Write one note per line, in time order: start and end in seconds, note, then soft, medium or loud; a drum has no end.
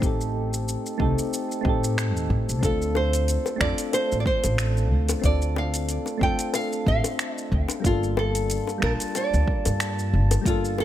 0.00 0.75 A1 medium
0.00 0.98 A3 medium
0.00 0.99 C4 medium
0.00 0.02 D#4 medium
0.00 0.96 D#4 medium
0.00 0.04 G4 medium
0.00 0.97 G4 medium
0.00 0.06 A4 medium
0.00 kick loud
0.00 shaker medium
0.06 0.98 A4 medium
0.21 shaker soft
0.54 shaker medium
0.69 shaker medium
0.86 shaker soft
0.98 1.11 C2 medium
0.98 1.60 A3 medium
0.98 1.62 C4 medium
0.98 1.62 D#4 medium
0.98 1.63 G4 medium
0.98 1.63 A4 medium
0.98 kick loud
1.19 shaker medium
1.33 shaker medium
1.52 shaker soft
1.61 2.16 A2 medium
1.61 2.58 A3 medium
1.61 2.59 C4 medium
1.61 2.59 D#4 medium
1.61 kick loud
1.67 2.61 G4 medium
1.67 2.62 A4 loud
1.84 shaker medium
1.98 finger snap medium
1.98 shaker medium
2.16 2.26 D#2 medium
2.16 shaker soft
2.30 2.51 A2 medium
2.30 kick medium
2.49 2.58 C2 medium
2.49 shaker medium
2.59 3.36 D2 medium
2.59 3.55 A3 medium
2.59 3.56 C4 medium
2.59 kick loud
2.59 closed hi-hat soft
2.63 3.58 D4 medium
2.63 3.58 F4 medium
2.63 2.97 A4 medium
2.63 3.59 A4 medium
2.63 shaker soft
2.82 shaker soft
2.95 3.57 C5 loud
2.95 high bongo medium
3.13 closed hi-hat soft
3.13 shaker medium
3.28 closed hi-hat soft
3.28 shaker medium
3.46 high bongo medium
3.46 shaker soft
3.56 5.18 A3 medium
3.56 5.19 C4 medium
3.56 5.20 D4 medium
3.61 3.72 F2 medium
3.61 5.21 F4 medium
3.61 5.22 A4 medium
3.61 3.91 D5 medium
3.61 finger snap medium
3.61 kick loud
3.78 closed hi-hat medium
3.78 shaker medium
3.93 4.20 C5 loud
3.93 closed hi-hat soft
3.93 high bongo medium
3.93 shaker soft
4.12 4.21 A1 medium
4.12 shaker soft
4.20 4.26 D5 medium
4.26 4.88 C5 medium
4.26 kick loud
4.44 4.92 A1 medium
4.44 closed hi-hat soft
4.44 high bongo medium
4.44 shaker medium
4.58 finger snap medium
4.58 closed hi-hat soft
4.58 shaker medium
4.77 shaker soft
4.92 5.13 D2 medium
5.09 closed hi-hat medium
5.09 high bongo medium
5.09 shaker medium
5.20 6.16 A3 medium
5.20 6.17 C4 medium
5.24 5.96 D2 medium
5.24 6.18 D4 medium
5.24 6.19 F4 medium
5.24 5.58 D5 medium
5.24 kick loud
5.24 closed hi-hat soft
5.24 shaker soft
5.28 6.20 A4 medium
5.42 shaker soft
5.56 6.23 F5 medium
5.56 high bongo medium
5.74 closed hi-hat soft
5.74 shaker medium
5.89 closed hi-hat soft
5.89 shaker soft
6.06 high bongo medium
6.06 shaker soft
6.18 6.33 F2 medium
6.18 7.79 A3 medium
6.18 7.80 C4 medium
6.18 7.81 D4 medium
6.18 kick medium
6.23 7.82 F4 medium
6.23 7.83 A4 medium
6.23 6.54 G5 loud
6.39 closed hi-hat medium
6.39 shaker medium
6.54 6.87 F5 loud
6.54 closed hi-hat soft
6.54 high bongo medium
6.54 shaker medium
6.73 shaker soft
6.86 6.98 A1 medium
6.86 7.34 F5 medium
6.86 kick loud
7.04 closed hi-hat soft
7.04 high bongo medium
7.04 shaker medium
7.19 finger snap medium
7.19 closed hi-hat soft
7.19 shaker soft
7.34 7.49 D#5 medium
7.34 shaker soft
7.52 7.63 D2 loud
7.52 kick medium
7.69 closed hi-hat medium
7.69 high bongo medium
7.69 shaker medium
7.80 8.77 G3 medium
7.80 8.78 A#3 medium
7.80 8.79 D4 medium
7.84 8.57 G1 medium
7.84 8.80 F4 medium
7.84 8.16 F4 medium
7.84 8.81 A4 medium
7.84 kick loud
7.84 closed hi-hat soft
7.84 shaker soft
8.03 shaker soft
8.17 8.79 A4 medium
8.17 high bongo medium
8.35 closed hi-hat medium
8.35 shaker medium
8.50 closed hi-hat soft
8.50 shaker medium
8.67 high bongo medium
8.67 shaker soft
8.78 10.40 G3 medium
8.78 10.41 A#3 medium
8.82 8.94 A#1 medium
8.82 10.42 D4 medium
8.82 10.43 F4 medium
8.82 8.92 A#4 medium
8.82 finger snap medium
8.82 kick medium
8.86 10.44 A5 loud
9.00 closed hi-hat medium
9.00 shaker medium
9.15 10.10 D5 medium
9.15 closed hi-hat soft
9.15 high bongo medium
9.15 shaker soft
9.34 9.43 D2 medium
9.34 shaker soft
9.48 kick medium
9.65 10.15 G2 medium
9.65 closed hi-hat medium
9.65 high bongo medium
9.65 shaker medium
9.80 finger snap medium
9.80 closed hi-hat soft
9.80 shaker soft
9.99 shaker soft
10.13 10.35 G1 medium
10.31 closed hi-hat medium
10.31 high bongo medium
10.31 shaker medium
10.41 10.85 G3 medium
10.41 10.85 A#3 medium
10.41 kick loud
10.46 10.85 G1 medium
10.46 10.85 D4 medium
10.46 10.80 F4 loud
10.46 10.85 F4 medium
10.46 closed hi-hat soft
10.46 shaker soft
10.50 10.85 A4 medium
10.65 shaker soft
10.78 10.85 A4 loud
10.78 high bongo medium